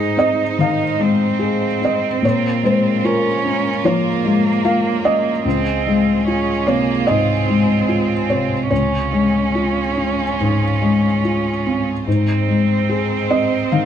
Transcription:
0.00 0.55 G#2 soft
0.00 0.99 G#3 soft
0.00 2.20 G#3 soft
0.00 0.59 D#4 soft
0.00 2.20 D#4 soft
0.00 0.42 G#4 soft
0.00 2.20 C5 soft
0.00 0.14 F5 soft
0.17 0.83 C4 soft
0.17 0.57 D#5 medium
0.58 1.24 D#3 soft
0.58 1.02 D#4 soft
0.58 1.79 F5 medium
0.99 1.65 G#3 soft
0.99 3.06 C4 soft
1.39 2.06 G#4 soft
1.81 2.23 C4 soft
1.81 2.22 D#5 soft
2.22 3.80 A#2 soft
2.22 5.42 G#3 soft
2.22 5.45 F4 soft
2.22 5.46 A#4 soft
2.22 2.62 C#5 medium
2.63 3.28 G#3 soft
2.63 3.02 C5 medium
3.04 3.86 C#4 soft
3.04 3.68 F4 soft
3.04 3.81 A#4 soft
3.45 4.09 C#4 soft
3.84 4.49 F3 soft
3.84 5.46 A#3 soft
3.84 4.61 C#5 medium
4.25 4.89 G#3 soft
4.65 5.29 F4 soft
4.65 5.02 F5 medium
5.05 5.46 C#4 soft
5.05 6.63 D#5 medium
5.45 7.03 C#2 soft
5.45 8.66 G#3 soft
5.45 6.25 C4 soft
5.45 8.67 F4 soft
5.45 8.70 G#4 soft
5.87 6.51 G#3 soft
6.27 6.68 C#4 soft
6.27 6.91 F4 soft
6.67 7.32 C3 soft
6.67 7.09 A#3 soft
6.67 7.05 C#5 medium
7.07 7.73 G#2 soft
7.07 8.70 C4 soft
7.07 8.25 D#5 soft
7.49 8.13 G#3 soft
7.89 8.54 F4 soft
8.30 8.96 C3 soft
8.30 8.68 C#5 soft
8.70 10.36 C#2 soft
8.70 12.03 G#3 soft
8.70 11.83 C#4 soft
8.70 12.03 F4 soft
8.70 12.03 G#4 soft
8.70 11.19 C#5 soft
9.12 9.80 G#3 soft
9.55 10.22 F4 soft
9.97 10.64 C#4 soft
10.40 11.07 G#2 soft
10.82 11.49 G#3 soft
11.24 11.91 F4 soft
11.66 12.08 C4 soft
12.05 13.68 G#2 soft
12.05 13.85 G#3 soft
12.05 13.85 C4 soft
12.05 13.85 D#4 soft
12.05 13.85 C5 soft
12.48 13.14 G#3 soft
12.89 13.55 G#4 soft
13.30 13.85 C4 soft
13.30 13.69 D#5 soft
13.72 13.85 D#3 soft
13.72 13.85 F5 soft

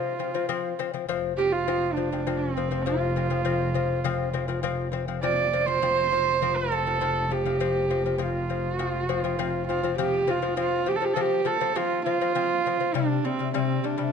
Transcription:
0.00 0.13 F3 medium
0.00 0.13 C4 medium
0.00 0.79 F4 medium
0.19 0.31 F3 medium
0.19 0.31 C4 medium
0.34 0.46 F3 medium
0.34 0.46 C4 medium
0.49 0.72 F3 loud
0.49 0.72 C4 loud
0.79 0.90 F3 medium
0.79 0.90 C4 medium
0.94 1.05 F3 medium
0.94 1.05 C4 medium
1.08 5.84 F1 medium
1.08 1.32 F3 medium
1.08 1.32 C4 loud
1.37 1.61 F3 medium
1.37 1.62 C4 medium
1.37 1.54 G4 medium
1.52 1.95 F4 medium
1.68 1.91 F3 medium
1.68 1.91 C4 medium
1.93 2.08 F3 medium
1.93 2.39 D4 medium
1.97 2.09 C4 medium
2.12 2.24 F3 medium
2.12 2.24 C4 medium
2.27 2.50 F3 medium
2.27 2.50 C4 medium
2.37 2.83 C4 medium
2.57 2.68 F3 medium
2.57 2.69 C4 medium
2.71 2.83 F3 medium
2.71 2.83 C4 medium
2.82 4.82 F4 medium
2.86 3.09 F3 medium
2.86 3.10 C4 medium
3.16 3.27 F3 medium
3.16 3.28 C4 medium
3.30 3.42 F3 medium
3.30 3.42 C4 medium
3.45 3.69 F3 medium
3.45 3.69 C4 medium
3.74 3.98 F3 medium
3.74 3.99 C4 medium
4.04 4.28 F3 loud
4.04 4.28 C4 loud
4.33 4.46 F3 medium
4.33 4.46 C4 medium
4.48 4.60 F3 medium
4.48 4.61 C4 medium
4.63 4.87 F3 loud
4.63 4.87 C4 loud
4.92 5.04 F3 medium
4.92 5.05 C4 medium
5.08 5.20 F3 medium
5.08 5.20 C4 medium
5.23 5.47 F3 medium
5.23 5.47 C4 loud
5.23 5.68 D5 loud
5.53 5.65 F3 medium
5.53 5.65 C4 medium
5.66 5.79 F3 medium
5.66 5.79 C4 medium
5.66 6.58 C5 loud
5.82 10.64 F1 medium
5.82 6.06 F3 medium
5.82 6.06 C4 loud
6.12 6.36 F3 medium
6.12 6.36 C4 medium
6.42 6.66 F3 medium
6.42 6.66 C4 medium
6.56 7.34 A4 medium
6.72 6.83 F3 medium
6.72 6.84 C4 medium
6.87 6.98 F3 medium
6.87 6.99 C4 medium
7.01 7.25 F3 medium
7.01 7.25 C4 medium
7.31 7.43 F3 medium
7.31 7.43 C4 medium
7.31 8.23 G4 medium
7.46 7.58 F3 medium
7.46 7.58 C4 medium
7.60 7.84 F3 medium
7.60 7.84 C4 loud
7.90 8.02 F3 medium
7.90 8.02 C4 medium
8.06 8.17 F3 medium
8.06 8.17 C4 medium
8.18 8.43 F3 medium
8.18 8.43 C4 medium
8.18 8.74 F4 medium
8.50 8.73 F3 medium
8.50 8.74 C4 medium
8.74 8.89 F#4 medium
8.79 9.03 F3 medium
8.79 9.03 C4 medium
8.89 9.04 F4 medium
9.04 9.18 F#4 medium
9.09 9.21 F3 medium
9.09 9.21 C4 medium
9.18 9.66 F4 medium
9.24 9.36 F3 medium
9.24 9.36 C4 medium
9.39 9.62 F3 loud
9.39 9.63 C4 loud
9.67 9.81 F3 medium
9.67 9.81 C4 medium
9.67 9.95 F4 medium
9.83 9.95 F3 medium
9.83 9.96 C4 medium
9.98 10.22 F3 loud
9.98 10.22 C4 loud
9.98 10.32 G4 medium
10.27 10.39 F3 medium
10.27 10.40 C4 medium
10.27 10.58 F4 medium
10.42 10.54 F3 medium
10.42 10.54 C4 medium
10.57 10.81 F3 medium
10.57 10.81 C4 loud
10.57 10.90 F4 loud
10.86 10.98 F3 medium
10.86 10.99 C4 medium
10.86 10.97 G4 medium
10.96 11.06 A4 medium
11.01 11.13 F3 medium
11.01 11.14 C4 medium
11.01 11.15 G4 medium
11.14 11.40 F3 medium
11.14 11.40 C4 loud
11.14 11.23 A4 medium
11.21 11.48 G4 loud
11.45 11.57 F3 medium
11.45 11.58 C4 medium
11.45 11.78 A4 medium
11.61 11.73 F3 medium
11.61 11.73 C4 medium
11.76 12.00 F3 medium
11.76 12.00 C4 loud
11.76 12.04 F4 loud
12.05 12.18 F3 medium
12.05 12.18 C4 medium
12.05 12.96 F4 loud
12.21 12.33 F3 medium
12.21 12.33 C4 medium
12.35 12.59 F3 medium
12.35 12.59 C4 loud
12.66 12.77 F3 medium
12.66 12.78 C4 medium
12.80 12.92 F3 medium
12.80 12.92 C4 medium
12.94 13.18 C3 medium
12.94 13.18 G3 loud
12.94 13.26 D4 medium
13.25 13.36 C3 medium
13.25 13.36 G3 medium
13.25 13.53 C4 medium
13.39 13.51 C3 medium
13.39 13.51 G3 medium
13.54 13.78 C3 medium
13.54 13.78 G3 loud
13.54 13.88 C4 medium
13.84 13.95 C3 medium
13.84 13.96 G3 medium
13.84 14.12 D4 medium
13.98 14.10 C3 medium
13.98 14.10 G3 medium

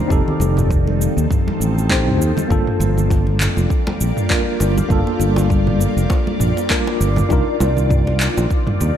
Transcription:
0.00 2.46 D#3 medium
0.00 0.12 D4 medium
0.00 0.09 D#4 medium
0.00 0.12 F4 medium
0.00 0.12 C5 medium
0.08 0.21 F1 medium
0.08 2.48 F3 medium
0.08 1.86 C4 medium
0.08 2.48 C4 medium
0.08 1.87 D#4 medium
0.08 1.87 G4 medium
0.08 2.49 A4 medium
0.08 1.88 A4 medium
0.08 kick loud
0.08 cabasa soft
0.28 low conga medium
0.40 1.06 F1 loud
0.40 high conga medium
0.40 cabasa medium
0.57 mid tom medium
0.57 low conga medium
0.57 cabasa soft
0.71 kick loud
0.71 cabasa soft
0.87 high conga medium
1.01 cabasa medium
1.17 1.25 D#2 medium
1.17 cabasa soft
1.31 kick loud
1.31 mid tom medium
1.31 cabasa soft
1.48 high conga loud
1.60 2.07 A1 medium
1.60 cabasa medium
1.78 cabasa soft
1.89 2.47 C4 medium
1.89 2.47 D#4 medium
1.89 2.47 G4 medium
1.89 2.47 C5 medium
1.89 kick loud
1.89 clap medium
1.89 high conga medium
1.89 cabasa soft
2.07 2.20 C2 medium
2.07 mid tom medium
2.20 2.30 D#2 medium
2.20 cabasa medium
2.37 high conga medium
2.37 low conga medium
2.37 cabasa soft
2.48 2.61 G1 medium
2.48 7.26 G3 medium
2.48 4.26 A#3 medium
2.48 7.27 A#3 medium
2.48 4.27 D4 medium
2.48 4.27 F4 medium
2.48 8.97 F4 medium
2.48 4.28 A4 medium
2.48 8.97 D5 medium
2.48 kick loud
2.48 cabasa soft
2.67 mid tom medium
2.80 3.46 G1 medium
2.80 high bongo soft
2.80 high conga medium
2.80 cabasa medium
2.97 low conga medium
2.97 cabasa soft
3.10 kick loud
3.10 high bongo medium
3.10 cabasa soft
3.27 high conga medium
3.40 clap medium
3.40 mid tom medium
3.40 cabasa medium
3.57 3.65 F1 medium
3.57 high bongo soft
3.57 cabasa soft
3.70 kick medium
3.70 cabasa soft
3.87 high bongo medium
3.87 high conga medium
4.01 4.11 A#1 medium
4.01 cabasa medium
4.17 mid tom medium
4.17 cabasa soft
4.29 4.87 A#3 medium
4.29 4.87 D4 medium
4.29 4.88 F4 medium
4.29 4.88 A#4 medium
4.29 kick loud
4.29 clap medium
4.29 high bongo soft
4.29 high conga medium
4.29 cabasa soft
4.60 4.80 G1 medium
4.60 high bongo medium
4.60 cabasa medium
4.78 high conga medium
4.78 low conga medium
4.78 cabasa soft
4.89 5.01 G1 medium
4.89 6.66 A#3 medium
4.89 6.67 D4 medium
4.89 6.68 F4 medium
4.89 6.68 A4 medium
4.89 kick medium
4.89 mid tom medium
4.89 cabasa soft
5.07 high bongo soft
5.20 5.86 G1 loud
5.20 high conga medium
5.20 cabasa medium
5.36 high bongo medium
5.36 low conga medium
5.36 cabasa soft
5.50 kick loud
5.50 cabasa soft
5.67 mid tom medium
5.67 high conga medium
5.80 high bongo soft
5.80 cabasa medium
5.97 6.05 F1 medium
5.97 cabasa soft
6.10 kick medium
6.10 high bongo medium
6.10 cabasa soft
6.27 high conga medium
6.40 6.50 A#1 medium
6.40 mid tom medium
6.40 cabasa medium
6.57 high bongo medium
6.57 cabasa soft
6.69 7.27 A#3 medium
6.69 7.27 D4 medium
6.69 7.28 F4 medium
6.69 7.28 A#4 medium
6.69 kick loud
6.69 clap medium
6.69 high conga medium
6.69 cabasa soft
6.87 high bongo medium
7.01 7.20 G1 loud
7.01 cabasa medium
7.16 mid tom medium
7.16 high conga medium
7.16 low conga medium
7.16 cabasa soft
7.29 7.41 C2 loud
7.29 8.97 C3 medium
7.29 8.97 D#3 medium
7.29 8.97 A#3 medium
7.29 8.97 D4 medium
7.29 8.97 D#4 medium
7.29 8.97 F4 medium
7.29 8.97 A#4 medium
7.29 kick medium
7.29 high bongo medium
7.29 cabasa soft
7.60 8.27 C2 medium
7.60 high bongo medium
7.60 high conga medium
7.60 cabasa medium
7.77 low conga medium
7.77 cabasa soft
7.90 kick medium
7.90 mid tom medium
7.90 cabasa soft
8.07 high bongo soft
8.07 high conga medium
8.20 clap medium
8.20 cabasa medium
8.37 8.45 A#1 medium
8.37 high bongo medium
8.37 cabasa soft
8.51 kick medium
8.51 cabasa soft
8.67 mid tom medium
8.67 high conga medium
8.80 8.91 D#2 medium
8.80 high bongo soft
8.80 cabasa medium

